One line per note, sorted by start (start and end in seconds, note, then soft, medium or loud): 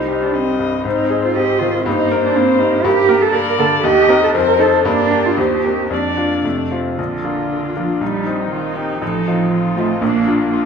0.00 0.82 C2 medium
0.00 0.81 G3 soft
0.00 0.24 D#4 medium
0.00 0.35 C5 medium
0.08 0.49 G4 soft
0.22 0.37 D4 medium
0.33 0.75 C4 soft
0.33 0.84 C4 medium
0.33 0.85 D#5 medium
0.59 0.85 G2 soft
0.85 1.83 G#2 medium
0.85 1.87 C4 medium
0.85 1.22 D#4 medium
0.85 1.35 C5 medium
1.10 1.50 G#4 soft
1.24 1.37 F4 medium
1.35 1.76 C4 medium
1.35 1.61 G4 medium
1.35 1.85 D#5 medium
1.59 1.86 D#3 soft
1.59 1.84 F4 medium
1.85 2.82 G2 medium
1.85 2.85 A#3 medium
1.85 2.22 D#4 medium
1.85 2.86 C5 medium
2.11 2.51 A#4 medium
2.25 2.37 D4 medium
2.36 2.75 A#3 medium
2.36 2.61 C4 medium
2.59 2.85 G3 medium
2.59 2.87 D#4 medium
2.84 3.81 G2 medium
2.84 3.23 G4 loud
2.84 3.33 A#4 medium
3.09 3.28 A#3 medium
3.09 3.49 A#4 medium
3.22 3.36 A4 loud
3.33 3.74 A#3 medium
3.33 3.61 A#4 loud
3.33 3.85 D5 medium
3.59 3.84 D3 medium
3.59 3.78 A#3 medium
3.59 3.84 A4 loud
3.84 4.33 D#2 medium
3.84 4.21 G4 loud
3.84 4.34 D#5 medium
4.09 4.28 C4 medium
4.09 4.32 D#4 medium
4.09 4.32 A#4 medium
4.23 4.28 A4 medium
4.35 4.84 F2 medium
4.35 4.62 A#4 loud
4.35 4.85 C5 medium
4.59 4.78 D#4 medium
4.59 4.83 D#4 medium
4.59 4.84 A4 medium
4.59 4.83 A4 medium
4.85 5.36 G2 medium
4.85 5.34 A#3 medium
4.85 5.27 D4 loud
4.85 5.40 A#4 medium
5.11 5.35 D4 medium
5.11 5.35 G4 medium
5.26 5.39 F4 medium
5.37 5.89 D#2 medium
5.37 5.89 A#3 medium
5.37 5.90 G4 medium
5.37 5.65 C5 medium
5.64 5.88 C4 soft
5.64 5.88 G4 soft
5.64 5.94 A#4 medium
5.90 6.43 F2 medium
5.90 6.45 A#3 soft
5.90 6.43 D4 medium
5.90 6.72 D5 medium
6.17 6.42 D4 soft
6.17 6.42 F4 soft
6.44 6.97 F2 medium
6.44 6.99 C3 medium
6.44 6.77 A3 soft
6.71 6.95 C4 soft
6.71 6.96 F4 soft
6.98 7.24 A#1 soft
6.98 7.75 D3 medium
6.98 8.03 F4 soft
7.24 7.72 A#3 soft
7.24 7.72 D4 soft
7.24 7.72 F4 soft
7.51 8.02 D4 soft
7.76 7.84 F3 medium
7.76 7.99 A#3 soft
7.76 7.99 D4 soft
7.76 7.99 F4 soft
8.00 8.25 A#1 soft
8.00 8.50 G3 medium
8.00 8.52 D#4 medium
8.00 10.03 D#4 soft
8.26 8.72 C4 soft
8.26 8.72 D#4 soft
8.51 9.00 D#3 medium
8.51 8.78 F4 medium
8.76 8.99 C4 soft
8.76 8.99 D#4 soft
8.76 9.00 G4 medium
9.01 9.26 A1 medium
9.01 9.75 F3 medium
9.01 9.50 A4 medium
9.27 9.73 C4 soft
9.27 9.73 D#4 soft
9.27 9.73 F4 soft
9.52 10.03 F4 medium
9.77 10.01 A3 medium
9.77 9.99 C4 soft
9.77 9.99 D#4 soft
9.77 9.99 F4 soft
10.01 10.26 A#1 medium
10.01 10.51 A#3 medium
10.01 10.51 D4 medium
10.01 10.52 D4 medium
10.27 10.65 A#3 soft
10.27 10.65 D4 soft
10.27 10.65 F4 medium
10.52 10.65 D4 medium
10.52 10.60 F4 medium